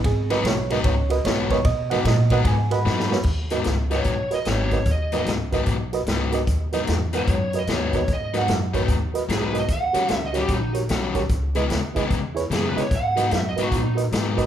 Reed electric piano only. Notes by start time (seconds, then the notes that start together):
0.06 G#4
0.30 F#4 A#4 B4 D#5
0.46 C#5
0.70 F#4 A#4 B4 D#5
0.86 C#5
1.10 F#4 A#4 B4 D#5
1.25 C#5
1.51 F#4 A#4 B4 C#5 D#5
1.65 D#5
1.90 F#4 A#4 B4 D#5 F#5
2.07 D#5
2.31 F#4 A#4 B4 D#5 F#5
2.47 G#5
2.71 F#4 A#4 B4 D#5 F#5 B5
3.11 F#4 A#4 B4 C#5
3.51 F#4 A#4 B4 D#5
3.90 F#4 A#4 B4 D#5
4.31 F#4 A#4 B4 D#5
4.72 F#4 A#4 B4 D#5
5.13 F#4 A#4 B4 D#5
5.52 F#4 A#4 B4 D#5
5.93 F#4 A#4 B4 D#5
6.32 F#4 A#4 B4 D#5
6.73 F#4 A#4 B4 D#5
7.14 F#4 A#4 B4 F#5
7.54 F#4 A#4 B4 D#5
7.94 F#4 A#4 B4 D#5
8.34 F#4 A#4 B4 D#5
8.74 F#4 A#4 B4 C#5
9.14 F#4 A#4 B4 D#5
9.53 F#4 A#4 B4 D#5
9.93 F#4 G4 A#4 C#5
10.33 F#4 G4 A#4 C#5
10.73 F#4 G4 A#4 C#5
11.15 F#4 G4 A#4 C#5
11.55 E4 G#4 B4 D#5
11.95 E4 G#4 B4 D#5
12.35 E4 G#4 B4 C#5
12.76 E4 G#4 B4 D#5
13.16 F#4 A#4 B4 D#5
13.56 F#4 A#4 B4 D#5
13.95 F#4 A#4 B4 D#5
14.37 F#4 A#4 B4 D#5